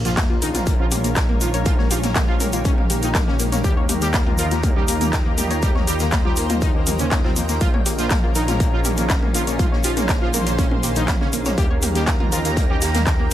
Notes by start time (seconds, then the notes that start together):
Already playing: A#1 C#4 D#4 F4 A#4 C#5, sub drop
0.05 F3 A#3 F4, snare, closed hi-hat, shaker
0.10 G#3
0.17 A#3, kick, snare, clap, closed hi-hat, mid tom, shaker
0.30 A#3 F4
0.42 D#3 D#4 A#4, closed hi-hat, open hi-hat, shaker
0.54 A#3 F4, snare, closed hi-hat, mid tom, shaker
0.66 A#3, kick, closed hi-hat, shaker
0.79 F3 C#4 F4
0.91 A#3 G4, closed hi-hat, open hi-hat, mid tom, shaker
1.01 A#3 F5, closed hi-hat, shaker
1.16 A#4, kick, snare, clap, closed hi-hat, shaker
1.29 A#3, mid tom
1.41 F3 A#3 F4, closed hi-hat, open hi-hat, shaker
1.54 A#3 C#5, closed hi-hat, shaker
1.65 F3 A#3 F4 G4, kick, closed hi-hat, mid tom, shaker
1.78 A#3 C#5, snare
1.91 F3 F4 G4, closed hi-hat, open hi-hat, shaker
2.03 A#3, snare, closed hi-hat, mid tom, shaker
2.15 A#3, kick, snare, clap, closed hi-hat, shaker
2.28 F3 F4
2.40 A#3 A#4, closed hi-hat, open hi-hat, mid tom, shaker
2.52 A#3 F4, closed hi-hat, shaker
2.65 C#3 A#3 C#4, kick, closed hi-hat, shaker
2.78 A#3 C#4, mid tom
2.90 A#3 G4, closed hi-hat, open hi-hat, shaker
3.03 D#3 A#3 D#4, closed hi-hat, shaker
3.15 A#3 A#4, kick, snare, clap, closed hi-hat, mid tom, shaker
3.27 C#3 A#3 C#4, snare
3.39 A#3, closed hi-hat, open hi-hat, shaker
3.52 A#3 C#5, snare, closed hi-hat, mid tom, shaker
3.64 D#2 D#3 G3 A#3 D#4 F4 G4 A#4 A#5, kick, closed hi-hat, shaker
3.77 A#3 A#4 C#5
3.89 A#3 G4, closed hi-hat, open hi-hat, mid tom, shaker
4.02 G3 A#3 G4, snare, closed hi-hat, shaker
4.13 A#3, kick, snare, clap, closed hi-hat, shaker
4.26 A#3 F4 D#5, mid tom
4.38 F3 F4 A#4, closed hi-hat, open hi-hat, shaker
4.51 A#3 F4, snare, closed hi-hat, shaker
4.63 A#3 G5, kick, closed hi-hat, mid tom, shaker
4.76 G3 C#4 G4
4.88 A#3 G4, closed hi-hat, open hi-hat, shaker
5.01 A#3, closed hi-hat, mid tom, shaker
5.12 A#4, kick, snare, clap, closed hi-hat, shaker
5.26 A#3
5.38 G3 A#3 G4, closed hi-hat, open hi-hat, mid tom, shaker
5.50 A#3 C#5, closed hi-hat, shaker
5.62 G3 A#3 G4 C5, kick, closed hi-hat, shaker
5.75 A#3 C#5, snare, mid tom
5.87 G3 G4, closed hi-hat, open hi-hat, shaker
5.99 A#3, snare, closed hi-hat, shaker
6.11 A#3, kick, snare, clap, closed hi-hat, mid tom, shaker
6.25 G3 F4 G4
6.36 A#3 A#4, closed hi-hat, open hi-hat, shaker
6.50 A#3 F4, closed hi-hat, mid tom, shaker
6.61 D#3 A#3 D#4, kick, closed hi-hat, shaker
6.75 A#3 C#4
6.87 F3 A#3, closed hi-hat, open hi-hat, mid tom, shaker
6.99 C#3 C#4 G4, closed hi-hat, shaker
7.11 A#3 C#4, kick, snare, clap, closed hi-hat, shaker
7.24 C3 C4 F4, snare, mid tom
7.36 F3 A#3, closed hi-hat, open hi-hat, shaker
7.49 A#3, snare, closed hi-hat, shaker
7.61 A#1 F3 A#3 C#4 D#4 F4 A#4, kick, closed hi-hat, shaker
7.71 A#3 G#4 C#5, mid tom
7.79 C#4
7.86 A#3 G4, closed hi-hat, open hi-hat, shaker
7.99 F3 A#3 F4, snare, closed hi-hat, shaker
8.10 A#3, kick, snare, clap, closed hi-hat, mid tom, shaker
8.23 A#3 F4
8.35 D#3 D#4 A#4, closed hi-hat, open hi-hat, shaker
8.48 A#3 F4, snare, closed hi-hat, mid tom, shaker
8.60 A#3, kick, closed hi-hat, shaker
8.73 F3 C#4 F4 F5
8.85 A#3 G4, closed hi-hat, open hi-hat, mid tom, shaker
8.97 A#3, closed hi-hat, shaker
9.10 C#4, kick, snare, clap, closed hi-hat, shaker
9.22 A#3, mid tom
9.34 F3 A#3 F4, closed hi-hat, open hi-hat, shaker
9.47 A#3 C#5, closed hi-hat, shaker
9.59 F3 A#3 F4 C5, kick, closed hi-hat, mid tom, shaker
9.72 A#3 C#5, snare
9.84 F3 F4 G4, closed hi-hat, open hi-hat, shaker
9.96 A#3, snare, closed hi-hat, mid tom, shaker
10.08 A#3, kick, snare, clap, closed hi-hat, shaker
10.22 F3 F4
10.34 A#3 A#4, closed hi-hat, open hi-hat, mid tom, shaker
10.46 A#3 F4, closed hi-hat, shaker
10.58 C#3 A#3 C#4, kick, closed hi-hat, shaker
10.71 A#3 C#4, mid tom
10.83 A#3 G4, closed hi-hat, open hi-hat, shaker
10.96 D#3 A#3 D#4, closed hi-hat, shaker
11.08 A#3 C#4, kick, snare, clap, closed hi-hat, mid tom, shaker
11.21 C#3 A#3 C#4, snare
11.33 A#3, closed hi-hat, open hi-hat, shaker
11.45 A#3 C#5, snare, closed hi-hat, mid tom, shaker
11.58 D#2 D#3 G3 A#3 D#4 F4 G4 A#4 A#5, kick, closed hi-hat, shaker
11.70 A#3 C#5 G5
11.78 A#4, shaker
11.82 A#3 G4, closed hi-hat, open hi-hat, mid tom
11.95 G3 A#3 G4, snare, closed hi-hat, shaker
12.01 D#5
12.07 A#3, kick, snare, clap, closed hi-hat, shaker
12.20 A#3 F4, mid tom
12.32 F3 F4 A#4, closed hi-hat, open hi-hat, shaker
12.44 A#3 F4, snare, closed hi-hat, shaker
12.57 A#3, kick, closed hi-hat, mid tom, shaker
12.70 G3 C#4 G4
12.81 A#3 G4, snare, closed hi-hat, open hi-hat, shaker
12.94 A#3, snare, closed hi-hat, mid tom, shaker
13.06 C#4, kick, snare, clap, closed hi-hat, shaker
13.19 A#3